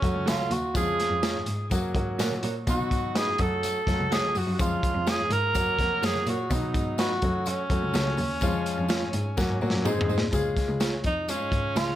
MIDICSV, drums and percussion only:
0, 0, Header, 1, 2, 480
1, 0, Start_track
1, 0, Tempo, 478851
1, 754, Time_signature, 4, 2, 24, 8
1, 11984, End_track
2, 0, Start_track
2, 0, Title_t, "Drums"
2, 24, Note_on_c, 9, 36, 90
2, 26, Note_on_c, 9, 62, 28
2, 26, Note_on_c, 9, 63, 64
2, 34, Note_on_c, 9, 42, 70
2, 38, Note_on_c, 9, 54, 43
2, 124, Note_off_c, 9, 36, 0
2, 126, Note_off_c, 9, 62, 0
2, 126, Note_off_c, 9, 63, 0
2, 134, Note_off_c, 9, 42, 0
2, 138, Note_off_c, 9, 54, 0
2, 268, Note_on_c, 9, 62, 33
2, 275, Note_on_c, 9, 42, 87
2, 277, Note_on_c, 9, 54, 103
2, 281, Note_on_c, 9, 38, 97
2, 368, Note_off_c, 9, 62, 0
2, 375, Note_off_c, 9, 42, 0
2, 377, Note_off_c, 9, 54, 0
2, 381, Note_off_c, 9, 38, 0
2, 392, Note_on_c, 9, 63, 71
2, 492, Note_off_c, 9, 63, 0
2, 510, Note_on_c, 9, 42, 70
2, 513, Note_on_c, 9, 64, 62
2, 520, Note_on_c, 9, 54, 60
2, 610, Note_off_c, 9, 42, 0
2, 614, Note_off_c, 9, 64, 0
2, 620, Note_off_c, 9, 54, 0
2, 751, Note_on_c, 9, 36, 115
2, 752, Note_on_c, 9, 42, 80
2, 756, Note_on_c, 9, 54, 100
2, 852, Note_off_c, 9, 36, 0
2, 852, Note_off_c, 9, 42, 0
2, 856, Note_off_c, 9, 54, 0
2, 875, Note_on_c, 9, 63, 63
2, 975, Note_off_c, 9, 63, 0
2, 998, Note_on_c, 9, 42, 67
2, 1001, Note_on_c, 9, 62, 28
2, 1003, Note_on_c, 9, 54, 55
2, 1008, Note_on_c, 9, 38, 33
2, 1099, Note_off_c, 9, 42, 0
2, 1101, Note_off_c, 9, 62, 0
2, 1103, Note_off_c, 9, 54, 0
2, 1108, Note_off_c, 9, 38, 0
2, 1231, Note_on_c, 9, 62, 30
2, 1233, Note_on_c, 9, 38, 111
2, 1233, Note_on_c, 9, 42, 87
2, 1234, Note_on_c, 9, 54, 84
2, 1331, Note_off_c, 9, 62, 0
2, 1333, Note_off_c, 9, 38, 0
2, 1333, Note_off_c, 9, 42, 0
2, 1334, Note_off_c, 9, 54, 0
2, 1466, Note_on_c, 9, 42, 83
2, 1467, Note_on_c, 9, 63, 52
2, 1478, Note_on_c, 9, 54, 45
2, 1566, Note_off_c, 9, 42, 0
2, 1567, Note_off_c, 9, 63, 0
2, 1578, Note_off_c, 9, 54, 0
2, 1702, Note_on_c, 9, 64, 60
2, 1714, Note_on_c, 9, 54, 100
2, 1715, Note_on_c, 9, 42, 92
2, 1716, Note_on_c, 9, 36, 89
2, 1802, Note_off_c, 9, 64, 0
2, 1814, Note_off_c, 9, 54, 0
2, 1816, Note_off_c, 9, 42, 0
2, 1817, Note_off_c, 9, 36, 0
2, 1950, Note_on_c, 9, 36, 95
2, 1952, Note_on_c, 9, 63, 65
2, 1959, Note_on_c, 9, 42, 71
2, 1960, Note_on_c, 9, 54, 43
2, 2051, Note_off_c, 9, 36, 0
2, 2052, Note_off_c, 9, 63, 0
2, 2060, Note_off_c, 9, 42, 0
2, 2060, Note_off_c, 9, 54, 0
2, 2196, Note_on_c, 9, 54, 98
2, 2200, Note_on_c, 9, 42, 97
2, 2206, Note_on_c, 9, 38, 100
2, 2296, Note_off_c, 9, 54, 0
2, 2300, Note_off_c, 9, 42, 0
2, 2306, Note_off_c, 9, 38, 0
2, 2319, Note_on_c, 9, 63, 68
2, 2419, Note_off_c, 9, 63, 0
2, 2434, Note_on_c, 9, 42, 74
2, 2440, Note_on_c, 9, 64, 63
2, 2442, Note_on_c, 9, 54, 56
2, 2534, Note_off_c, 9, 42, 0
2, 2540, Note_off_c, 9, 64, 0
2, 2542, Note_off_c, 9, 54, 0
2, 2677, Note_on_c, 9, 42, 75
2, 2679, Note_on_c, 9, 36, 106
2, 2680, Note_on_c, 9, 54, 97
2, 2680, Note_on_c, 9, 62, 34
2, 2777, Note_off_c, 9, 42, 0
2, 2780, Note_off_c, 9, 36, 0
2, 2780, Note_off_c, 9, 54, 0
2, 2780, Note_off_c, 9, 62, 0
2, 2807, Note_on_c, 9, 63, 63
2, 2907, Note_off_c, 9, 63, 0
2, 2919, Note_on_c, 9, 36, 86
2, 2923, Note_on_c, 9, 42, 60
2, 2931, Note_on_c, 9, 54, 59
2, 3019, Note_off_c, 9, 36, 0
2, 3023, Note_off_c, 9, 42, 0
2, 3031, Note_off_c, 9, 54, 0
2, 3162, Note_on_c, 9, 42, 96
2, 3163, Note_on_c, 9, 38, 118
2, 3166, Note_on_c, 9, 54, 84
2, 3263, Note_off_c, 9, 38, 0
2, 3263, Note_off_c, 9, 42, 0
2, 3266, Note_off_c, 9, 54, 0
2, 3392, Note_on_c, 9, 42, 81
2, 3401, Note_on_c, 9, 63, 58
2, 3401, Note_on_c, 9, 64, 56
2, 3402, Note_on_c, 9, 36, 83
2, 3413, Note_on_c, 9, 54, 46
2, 3492, Note_off_c, 9, 42, 0
2, 3501, Note_off_c, 9, 63, 0
2, 3501, Note_off_c, 9, 64, 0
2, 3502, Note_off_c, 9, 36, 0
2, 3514, Note_off_c, 9, 54, 0
2, 3641, Note_on_c, 9, 42, 90
2, 3642, Note_on_c, 9, 64, 58
2, 3649, Note_on_c, 9, 54, 94
2, 3742, Note_off_c, 9, 42, 0
2, 3742, Note_off_c, 9, 64, 0
2, 3749, Note_off_c, 9, 54, 0
2, 3879, Note_on_c, 9, 36, 93
2, 3880, Note_on_c, 9, 63, 58
2, 3888, Note_on_c, 9, 42, 77
2, 3890, Note_on_c, 9, 54, 44
2, 3895, Note_on_c, 9, 38, 34
2, 3979, Note_off_c, 9, 36, 0
2, 3980, Note_off_c, 9, 63, 0
2, 3988, Note_off_c, 9, 42, 0
2, 3991, Note_off_c, 9, 54, 0
2, 3995, Note_off_c, 9, 38, 0
2, 4122, Note_on_c, 9, 62, 29
2, 4128, Note_on_c, 9, 42, 91
2, 4130, Note_on_c, 9, 54, 97
2, 4134, Note_on_c, 9, 38, 100
2, 4222, Note_off_c, 9, 62, 0
2, 4229, Note_off_c, 9, 42, 0
2, 4231, Note_off_c, 9, 54, 0
2, 4235, Note_off_c, 9, 38, 0
2, 4252, Note_on_c, 9, 63, 70
2, 4352, Note_off_c, 9, 63, 0
2, 4360, Note_on_c, 9, 46, 52
2, 4362, Note_on_c, 9, 64, 60
2, 4366, Note_on_c, 9, 54, 64
2, 4460, Note_off_c, 9, 46, 0
2, 4462, Note_off_c, 9, 64, 0
2, 4467, Note_off_c, 9, 54, 0
2, 4604, Note_on_c, 9, 54, 88
2, 4606, Note_on_c, 9, 36, 114
2, 4606, Note_on_c, 9, 42, 80
2, 4704, Note_off_c, 9, 54, 0
2, 4706, Note_off_c, 9, 36, 0
2, 4706, Note_off_c, 9, 42, 0
2, 4729, Note_on_c, 9, 63, 61
2, 4829, Note_off_c, 9, 63, 0
2, 4843, Note_on_c, 9, 36, 94
2, 4845, Note_on_c, 9, 62, 28
2, 4848, Note_on_c, 9, 54, 59
2, 4849, Note_on_c, 9, 42, 62
2, 4944, Note_off_c, 9, 36, 0
2, 4945, Note_off_c, 9, 62, 0
2, 4948, Note_off_c, 9, 54, 0
2, 4949, Note_off_c, 9, 42, 0
2, 5079, Note_on_c, 9, 54, 89
2, 5081, Note_on_c, 9, 62, 34
2, 5087, Note_on_c, 9, 38, 106
2, 5087, Note_on_c, 9, 42, 87
2, 5179, Note_off_c, 9, 54, 0
2, 5182, Note_off_c, 9, 62, 0
2, 5187, Note_off_c, 9, 38, 0
2, 5187, Note_off_c, 9, 42, 0
2, 5314, Note_on_c, 9, 63, 62
2, 5314, Note_on_c, 9, 64, 60
2, 5318, Note_on_c, 9, 42, 81
2, 5326, Note_on_c, 9, 54, 48
2, 5414, Note_off_c, 9, 63, 0
2, 5414, Note_off_c, 9, 64, 0
2, 5418, Note_off_c, 9, 42, 0
2, 5426, Note_off_c, 9, 54, 0
2, 5551, Note_on_c, 9, 62, 27
2, 5551, Note_on_c, 9, 64, 61
2, 5559, Note_on_c, 9, 54, 101
2, 5566, Note_on_c, 9, 36, 92
2, 5567, Note_on_c, 9, 42, 93
2, 5651, Note_off_c, 9, 62, 0
2, 5651, Note_off_c, 9, 64, 0
2, 5659, Note_off_c, 9, 54, 0
2, 5666, Note_off_c, 9, 36, 0
2, 5668, Note_off_c, 9, 42, 0
2, 5800, Note_on_c, 9, 36, 88
2, 5801, Note_on_c, 9, 63, 62
2, 5806, Note_on_c, 9, 42, 82
2, 5807, Note_on_c, 9, 54, 44
2, 5813, Note_on_c, 9, 38, 33
2, 5900, Note_off_c, 9, 36, 0
2, 5902, Note_off_c, 9, 63, 0
2, 5906, Note_off_c, 9, 42, 0
2, 5907, Note_off_c, 9, 54, 0
2, 5913, Note_off_c, 9, 38, 0
2, 6041, Note_on_c, 9, 54, 98
2, 6048, Note_on_c, 9, 42, 98
2, 6054, Note_on_c, 9, 38, 109
2, 6142, Note_off_c, 9, 54, 0
2, 6148, Note_off_c, 9, 42, 0
2, 6155, Note_off_c, 9, 38, 0
2, 6166, Note_on_c, 9, 63, 72
2, 6266, Note_off_c, 9, 63, 0
2, 6277, Note_on_c, 9, 54, 59
2, 6281, Note_on_c, 9, 42, 73
2, 6283, Note_on_c, 9, 64, 62
2, 6378, Note_off_c, 9, 54, 0
2, 6382, Note_off_c, 9, 42, 0
2, 6383, Note_off_c, 9, 64, 0
2, 6520, Note_on_c, 9, 54, 89
2, 6522, Note_on_c, 9, 62, 33
2, 6523, Note_on_c, 9, 36, 104
2, 6523, Note_on_c, 9, 42, 77
2, 6620, Note_off_c, 9, 54, 0
2, 6622, Note_off_c, 9, 62, 0
2, 6623, Note_off_c, 9, 36, 0
2, 6623, Note_off_c, 9, 42, 0
2, 6651, Note_on_c, 9, 63, 64
2, 6751, Note_off_c, 9, 63, 0
2, 6760, Note_on_c, 9, 36, 99
2, 6765, Note_on_c, 9, 42, 66
2, 6765, Note_on_c, 9, 54, 60
2, 6767, Note_on_c, 9, 62, 29
2, 6861, Note_off_c, 9, 36, 0
2, 6865, Note_off_c, 9, 42, 0
2, 6865, Note_off_c, 9, 54, 0
2, 6867, Note_off_c, 9, 62, 0
2, 6996, Note_on_c, 9, 54, 82
2, 7004, Note_on_c, 9, 62, 33
2, 7006, Note_on_c, 9, 38, 118
2, 7006, Note_on_c, 9, 42, 98
2, 7096, Note_off_c, 9, 54, 0
2, 7104, Note_off_c, 9, 62, 0
2, 7106, Note_off_c, 9, 38, 0
2, 7106, Note_off_c, 9, 42, 0
2, 7236, Note_on_c, 9, 42, 78
2, 7242, Note_on_c, 9, 36, 88
2, 7242, Note_on_c, 9, 54, 45
2, 7243, Note_on_c, 9, 63, 57
2, 7243, Note_on_c, 9, 64, 54
2, 7336, Note_off_c, 9, 42, 0
2, 7342, Note_off_c, 9, 36, 0
2, 7342, Note_off_c, 9, 54, 0
2, 7343, Note_off_c, 9, 63, 0
2, 7343, Note_off_c, 9, 64, 0
2, 7475, Note_on_c, 9, 54, 97
2, 7482, Note_on_c, 9, 64, 62
2, 7484, Note_on_c, 9, 42, 90
2, 7575, Note_off_c, 9, 54, 0
2, 7582, Note_off_c, 9, 64, 0
2, 7584, Note_off_c, 9, 42, 0
2, 7716, Note_on_c, 9, 54, 43
2, 7718, Note_on_c, 9, 36, 98
2, 7719, Note_on_c, 9, 62, 27
2, 7719, Note_on_c, 9, 63, 59
2, 7725, Note_on_c, 9, 42, 74
2, 7816, Note_off_c, 9, 54, 0
2, 7818, Note_off_c, 9, 36, 0
2, 7820, Note_off_c, 9, 62, 0
2, 7820, Note_off_c, 9, 63, 0
2, 7825, Note_off_c, 9, 42, 0
2, 7956, Note_on_c, 9, 54, 97
2, 7970, Note_on_c, 9, 42, 88
2, 7976, Note_on_c, 9, 38, 98
2, 8056, Note_off_c, 9, 54, 0
2, 8070, Note_off_c, 9, 42, 0
2, 8076, Note_off_c, 9, 38, 0
2, 8088, Note_on_c, 9, 63, 67
2, 8188, Note_off_c, 9, 63, 0
2, 8191, Note_on_c, 9, 54, 58
2, 8201, Note_on_c, 9, 46, 53
2, 8211, Note_on_c, 9, 62, 31
2, 8211, Note_on_c, 9, 64, 60
2, 8291, Note_off_c, 9, 54, 0
2, 8301, Note_off_c, 9, 46, 0
2, 8312, Note_off_c, 9, 62, 0
2, 8312, Note_off_c, 9, 64, 0
2, 8429, Note_on_c, 9, 54, 93
2, 8440, Note_on_c, 9, 36, 104
2, 8441, Note_on_c, 9, 42, 78
2, 8444, Note_on_c, 9, 62, 33
2, 8529, Note_off_c, 9, 54, 0
2, 8540, Note_off_c, 9, 36, 0
2, 8541, Note_off_c, 9, 42, 0
2, 8545, Note_off_c, 9, 62, 0
2, 8565, Note_on_c, 9, 63, 61
2, 8665, Note_off_c, 9, 63, 0
2, 8678, Note_on_c, 9, 54, 65
2, 8682, Note_on_c, 9, 42, 63
2, 8778, Note_off_c, 9, 54, 0
2, 8782, Note_off_c, 9, 42, 0
2, 8906, Note_on_c, 9, 54, 83
2, 8921, Note_on_c, 9, 38, 107
2, 8921, Note_on_c, 9, 42, 96
2, 9006, Note_off_c, 9, 54, 0
2, 9021, Note_off_c, 9, 38, 0
2, 9021, Note_off_c, 9, 42, 0
2, 9152, Note_on_c, 9, 42, 86
2, 9153, Note_on_c, 9, 63, 60
2, 9153, Note_on_c, 9, 64, 61
2, 9154, Note_on_c, 9, 54, 51
2, 9252, Note_off_c, 9, 42, 0
2, 9253, Note_off_c, 9, 63, 0
2, 9253, Note_off_c, 9, 64, 0
2, 9254, Note_off_c, 9, 54, 0
2, 9391, Note_on_c, 9, 64, 61
2, 9396, Note_on_c, 9, 54, 101
2, 9400, Note_on_c, 9, 36, 87
2, 9408, Note_on_c, 9, 38, 53
2, 9492, Note_off_c, 9, 64, 0
2, 9496, Note_off_c, 9, 54, 0
2, 9500, Note_off_c, 9, 36, 0
2, 9509, Note_off_c, 9, 38, 0
2, 9635, Note_on_c, 9, 54, 42
2, 9636, Note_on_c, 9, 63, 59
2, 9724, Note_on_c, 9, 38, 75
2, 9736, Note_off_c, 9, 54, 0
2, 9736, Note_off_c, 9, 63, 0
2, 9824, Note_off_c, 9, 38, 0
2, 9878, Note_on_c, 9, 45, 74
2, 9878, Note_on_c, 9, 54, 105
2, 9978, Note_off_c, 9, 45, 0
2, 9978, Note_off_c, 9, 54, 0
2, 10001, Note_on_c, 9, 63, 74
2, 10032, Note_on_c, 9, 43, 96
2, 10101, Note_off_c, 9, 63, 0
2, 10115, Note_on_c, 9, 62, 28
2, 10115, Note_on_c, 9, 64, 70
2, 10118, Note_on_c, 9, 54, 63
2, 10132, Note_off_c, 9, 43, 0
2, 10202, Note_on_c, 9, 38, 86
2, 10215, Note_off_c, 9, 62, 0
2, 10215, Note_off_c, 9, 64, 0
2, 10219, Note_off_c, 9, 54, 0
2, 10303, Note_off_c, 9, 38, 0
2, 10351, Note_on_c, 9, 42, 77
2, 10353, Note_on_c, 9, 36, 99
2, 10354, Note_on_c, 9, 54, 93
2, 10356, Note_on_c, 9, 62, 31
2, 10451, Note_off_c, 9, 42, 0
2, 10454, Note_off_c, 9, 36, 0
2, 10454, Note_off_c, 9, 54, 0
2, 10457, Note_off_c, 9, 62, 0
2, 10478, Note_on_c, 9, 63, 55
2, 10578, Note_off_c, 9, 63, 0
2, 10591, Note_on_c, 9, 36, 94
2, 10593, Note_on_c, 9, 42, 59
2, 10600, Note_on_c, 9, 54, 57
2, 10603, Note_on_c, 9, 38, 31
2, 10691, Note_off_c, 9, 36, 0
2, 10693, Note_off_c, 9, 42, 0
2, 10701, Note_off_c, 9, 54, 0
2, 10703, Note_off_c, 9, 38, 0
2, 10827, Note_on_c, 9, 54, 80
2, 10832, Note_on_c, 9, 62, 33
2, 10833, Note_on_c, 9, 38, 101
2, 10833, Note_on_c, 9, 42, 90
2, 10927, Note_off_c, 9, 54, 0
2, 10932, Note_off_c, 9, 62, 0
2, 10933, Note_off_c, 9, 38, 0
2, 10933, Note_off_c, 9, 42, 0
2, 11064, Note_on_c, 9, 42, 71
2, 11067, Note_on_c, 9, 62, 25
2, 11067, Note_on_c, 9, 63, 57
2, 11067, Note_on_c, 9, 64, 54
2, 11071, Note_on_c, 9, 36, 83
2, 11071, Note_on_c, 9, 54, 41
2, 11164, Note_off_c, 9, 42, 0
2, 11168, Note_off_c, 9, 62, 0
2, 11168, Note_off_c, 9, 63, 0
2, 11168, Note_off_c, 9, 64, 0
2, 11171, Note_off_c, 9, 36, 0
2, 11171, Note_off_c, 9, 54, 0
2, 11306, Note_on_c, 9, 62, 27
2, 11306, Note_on_c, 9, 64, 58
2, 11311, Note_on_c, 9, 54, 92
2, 11314, Note_on_c, 9, 42, 97
2, 11407, Note_off_c, 9, 62, 0
2, 11407, Note_off_c, 9, 64, 0
2, 11411, Note_off_c, 9, 54, 0
2, 11414, Note_off_c, 9, 42, 0
2, 11544, Note_on_c, 9, 62, 29
2, 11544, Note_on_c, 9, 63, 59
2, 11545, Note_on_c, 9, 36, 90
2, 11552, Note_on_c, 9, 42, 73
2, 11557, Note_on_c, 9, 54, 42
2, 11645, Note_off_c, 9, 62, 0
2, 11645, Note_off_c, 9, 63, 0
2, 11646, Note_off_c, 9, 36, 0
2, 11652, Note_off_c, 9, 42, 0
2, 11657, Note_off_c, 9, 54, 0
2, 11788, Note_on_c, 9, 54, 92
2, 11794, Note_on_c, 9, 42, 87
2, 11800, Note_on_c, 9, 38, 108
2, 11888, Note_off_c, 9, 54, 0
2, 11894, Note_off_c, 9, 42, 0
2, 11900, Note_off_c, 9, 38, 0
2, 11914, Note_on_c, 9, 63, 70
2, 11984, Note_off_c, 9, 63, 0
2, 11984, End_track
0, 0, End_of_file